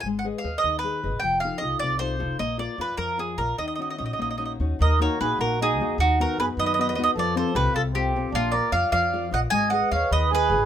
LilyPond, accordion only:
\new Staff \with { instrumentName = "Accordion" } { \time 6/8 \key ees \minor \tempo 4. = 102 r2. | r2. | r2. | r2. |
bes'8 bes'8 aes'8 ges'8 ees'4 | dis'8 fis'8 aes'8 b'4. | a'8 a'8 g'8 f'8 c'4 | d'8 bes'8 d''8 d''4 ees''8 |
ees''8 ees''8 des''8 ces''8 aes'4 | }